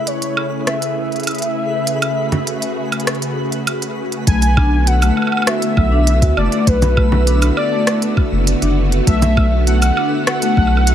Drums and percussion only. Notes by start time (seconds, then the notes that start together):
0.07 closed hi-hat
0.22 closed hi-hat
0.37 high woodblock
0.67 cross-stick, closed hi-hat
0.82 closed hi-hat
1.12 closed hi-hat
1.16 closed hi-hat
1.20 closed hi-hat
1.23 closed hi-hat
1.27 closed hi-hat, high woodblock
1.31 closed hi-hat
1.35 closed hi-hat
1.38 closed hi-hat
1.42 closed hi-hat
1.87 closed hi-hat
2.02 closed hi-hat, high woodblock
2.32 closed hi-hat, low conga
2.47 closed hi-hat
2.62 closed hi-hat
2.92 closed hi-hat, high woodblock
3.00 closed hi-hat
3.07 cross-stick, closed hi-hat
3.15 closed hi-hat
3.22 closed hi-hat
3.52 closed hi-hat
3.67 closed hi-hat, high woodblock
3.82 closed hi-hat
4.12 closed hi-hat
4.27 kick, closed hi-hat
4.42 closed hi-hat, cabasa
4.57 kick, high woodblock
4.87 closed hi-hat
5.02 closed hi-hat, cabasa, high woodblock
5.17 high woodblock
5.22 high woodblock
5.27 high woodblock
5.32 high woodblock
5.37 high woodblock
5.42 high woodblock
5.47 cross-stick, closed hi-hat
5.62 closed hi-hat
5.77 kick, high woodblock
6.07 closed hi-hat
6.22 kick, closed hi-hat
6.37 high woodblock
6.52 closed hi-hat
6.67 kick, closed hi-hat
6.82 closed hi-hat, low conga, cabasa
6.97 kick, high woodblock
7.12 low conga
7.27 closed hi-hat
7.42 closed hi-hat, cabasa, high woodblock
7.57 high woodblock
7.87 cross-stick, closed hi-hat
8.02 closed hi-hat
8.17 kick, high woodblock
8.47 closed hi-hat
8.62 closed hi-hat
8.92 closed hi-hat
9.07 kick, closed hi-hat
9.22 closed hi-hat, low conga, cabasa
9.37 kick, high woodblock
9.67 closed hi-hat
9.82 closed hi-hat, cabasa, high woodblock
9.97 high woodblock
10.27 cross-stick, closed hi-hat
10.42 closed hi-hat
10.57 kick, high woodblock
10.67 high woodblock
10.77 high woodblock
10.87 closed hi-hat